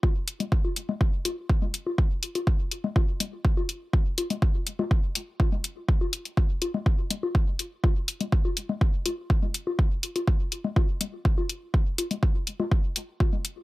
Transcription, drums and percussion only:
0.03 kick, high conga
0.28 closed hi-hat
0.40 closed hi-hat, low conga
0.52 kick
0.65 high conga
0.76 closed hi-hat
0.89 low conga
1.01 kick
1.25 closed hi-hat, high conga
1.49 kick
1.62 low conga
1.74 closed hi-hat
1.86 high conga
1.98 kick
2.23 closed hi-hat
2.35 closed hi-hat, high conga
2.47 kick
2.71 closed hi-hat
2.84 low conga
2.96 kick, high conga
3.20 closed hi-hat, low conga
3.45 kick
3.57 high conga
3.69 closed hi-hat
3.93 kick
4.18 closed hi-hat, high conga
4.30 closed hi-hat, low conga
4.42 kick
4.67 closed hi-hat
4.79 high conga, low conga
4.91 kick
5.15 closed hi-hat
5.40 kick, high conga
5.52 low conga
5.64 closed hi-hat
5.88 kick
6.01 high conga
6.13 closed hi-hat
6.25 closed hi-hat
6.37 kick
6.62 closed hi-hat, high conga
6.74 low conga
6.86 kick
7.10 closed hi-hat, low conga
7.23 high conga
7.35 kick
7.59 closed hi-hat
7.84 kick, high conga
8.08 closed hi-hat
8.21 closed hi-hat, low conga
8.32 kick
8.45 high conga
8.57 closed hi-hat
8.69 low conga
8.81 kick
9.06 closed hi-hat, high conga
9.30 kick
9.43 low conga
9.54 closed hi-hat
9.67 high conga
9.79 kick
10.03 closed hi-hat
10.16 closed hi-hat, high conga
10.27 kick
10.52 closed hi-hat
10.64 low conga
10.76 kick, high conga
11.01 closed hi-hat, low conga
11.25 kick
11.38 high conga
11.49 closed hi-hat
11.74 kick
11.98 closed hi-hat, high conga
12.11 closed hi-hat, low conga
12.23 kick
12.47 closed hi-hat
12.60 high conga, low conga
12.71 kick
12.96 closed hi-hat
13.20 kick, high conga
13.33 low conga
13.45 closed hi-hat

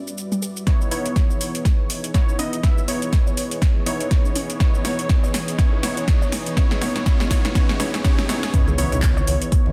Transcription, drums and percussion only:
0.07 shaker
0.18 shaker
0.32 shaker
0.42 shaker
0.57 shaker
0.67 kick, snare, closed hi-hat, shaker
0.81 shaker
0.91 open hi-hat, shaker
1.06 closed hi-hat, shaker
1.16 kick, snare, closed hi-hat, shaker
1.30 shaker
1.41 open hi-hat, shaker
1.55 closed hi-hat, shaker
1.65 kick, snare, closed hi-hat, shaker
1.90 open hi-hat, shaker
2.04 closed hi-hat, shaker
2.14 kick, snare, closed hi-hat, shaker
2.29 shaker
2.39 open hi-hat, shaker
2.53 closed hi-hat, shaker
2.63 kick, snare, closed hi-hat, shaker
2.78 shaker
2.88 open hi-hat, shaker
3.02 closed hi-hat, shaker
3.13 kick, snare, closed hi-hat, shaker
3.27 shaker
3.37 open hi-hat, shaker
3.51 closed hi-hat, shaker
3.62 kick, snare, closed hi-hat, shaker
3.86 open hi-hat, shaker
4.00 closed hi-hat, shaker
4.11 kick, snare, closed hi-hat, shaker
4.25 shaker
4.36 open hi-hat, shaker
4.50 closed hi-hat, shaker
4.60 kick, snare, closed hi-hat, shaker
4.75 shaker
4.85 snare, open hi-hat, shaker
4.99 closed hi-hat, shaker
5.09 kick, snare, closed hi-hat, shaker
5.24 shaker
5.34 snare, open hi-hat, shaker
5.48 closed hi-hat, shaker
5.59 kick, snare, closed hi-hat, shaker
5.83 snare, open hi-hat, shaker
5.97 closed hi-hat, shaker
6.08 kick, snare, closed hi-hat, shaker
6.22 shaker
6.32 snare, open hi-hat, shaker
6.46 closed hi-hat, shaker
6.57 kick, snare, closed hi-hat, shaker
6.71 snare, shaker
6.82 snare, open hi-hat, shaker
6.96 snare, closed hi-hat, shaker
7.06 kick, snare, closed hi-hat, shaker
7.20 snare, shaker
7.31 kick, snare, open hi-hat, shaker
7.45 snare, closed hi-hat, shaker
7.55 kick, snare, closed hi-hat, shaker
7.69 snare, shaker
7.80 snare, open hi-hat, shaker
7.94 snare, closed hi-hat, shaker
8.04 kick, snare, closed hi-hat, shaker
8.19 snare, shaker
8.29 snare, open hi-hat, shaker
8.43 snare, closed hi-hat, shaker
8.54 kick, closed hi-hat, shaker
8.68 high conga, shaker
8.78 open hi-hat, shaker
8.92 closed hi-hat, low conga, shaker
9.02 kick, clap, closed hi-hat, shaker
9.17 high conga, shaker
9.27 open hi-hat, shaker
9.42 closed hi-hat, shaker
9.52 kick, closed hi-hat, shaker
9.66 high conga

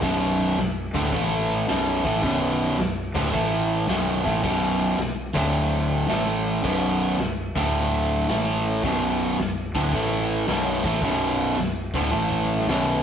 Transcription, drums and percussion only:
0.02 kick, open hi-hat
0.57 snare, open hi-hat
0.94 kick
1.13 kick, open hi-hat
1.68 snare, open hi-hat
2.05 kick
2.23 kick, open hi-hat
2.79 snare, open hi-hat
3.15 kick
3.34 kick, open hi-hat
3.89 snare, open hi-hat
4.26 kick
4.44 kick, open hi-hat
4.99 snare, open hi-hat
5.36 kick
5.54 open hi-hat
6.09 snare, open hi-hat
6.64 kick, open hi-hat
7.19 snare, open hi-hat
7.56 kick
7.75 open hi-hat
8.29 snare, open hi-hat
8.83 kick, open hi-hat
9.38 snare, open hi-hat
9.75 kick
9.93 kick, open hi-hat
10.47 snare, open hi-hat
10.84 kick
11.01 kick, open hi-hat
11.57 snare, open hi-hat
11.94 kick
12.12 high tom
12.30 kick
12.59 snare
12.69 snare

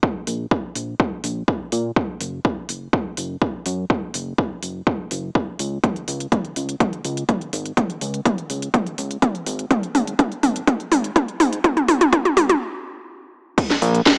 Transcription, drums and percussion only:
0.03 kick
0.27 open hi-hat
0.51 kick
0.76 open hi-hat
1.00 kick
1.24 open hi-hat
1.48 kick
1.72 open hi-hat
1.96 kick
2.21 open hi-hat
2.45 kick
2.69 open hi-hat
2.93 kick
3.17 open hi-hat
3.42 kick
3.66 open hi-hat
3.90 kick
4.14 open hi-hat
4.38 kick
4.63 open hi-hat
4.87 kick
5.11 open hi-hat
5.35 kick
5.59 open hi-hat
5.84 kick, closed hi-hat, mid tom
5.96 closed hi-hat
6.08 open hi-hat
6.20 closed hi-hat
6.32 kick, closed hi-hat, mid tom
6.45 closed hi-hat
6.56 open hi-hat
6.69 closed hi-hat
6.80 kick, closed hi-hat, mid tom
6.93 closed hi-hat
7.05 open hi-hat
7.17 closed hi-hat
7.29 kick, closed hi-hat, mid tom
7.41 closed hi-hat
7.53 open hi-hat
7.66 closed hi-hat
7.77 kick, closed hi-hat, mid tom
7.90 closed hi-hat
8.01 open hi-hat
8.14 closed hi-hat
8.25 kick, closed hi-hat, mid tom
8.38 closed hi-hat
8.50 open hi-hat
8.62 closed hi-hat
8.74 kick, closed hi-hat, mid tom
8.87 closed hi-hat
8.98 open hi-hat
9.11 closed hi-hat
9.22 kick, closed hi-hat, mid tom
9.35 closed hi-hat
9.46 open hi-hat
9.59 closed hi-hat
9.71 kick, closed hi-hat, mid tom
9.83 closed hi-hat
9.95 open hi-hat, mid tom
10.07 closed hi-hat
10.19 kick, closed hi-hat, mid tom
10.32 closed hi-hat
10.43 open hi-hat, mid tom
10.56 closed hi-hat
10.67 kick, closed hi-hat, mid tom
10.80 closed hi-hat
10.92 open hi-hat, mid tom
11.04 closed hi-hat
11.16 kick, closed hi-hat, mid tom
11.28 closed hi-hat
11.40 open hi-hat, mid tom
11.53 closed hi-hat
11.64 kick, closed hi-hat, mid tom
11.77 closed hi-hat, mid tom
11.88 open hi-hat, mid tom
12.01 closed hi-hat, mid tom
12.13 kick, closed hi-hat, mid tom
12.25 closed hi-hat, mid tom
12.37 open hi-hat, mid tom
12.49 closed hi-hat, mid tom
13.58 kick, closed hi-hat, crash
13.70 snare, closed hi-hat
13.82 open hi-hat
13.95 closed hi-hat
14.06 kick, snare, closed hi-hat

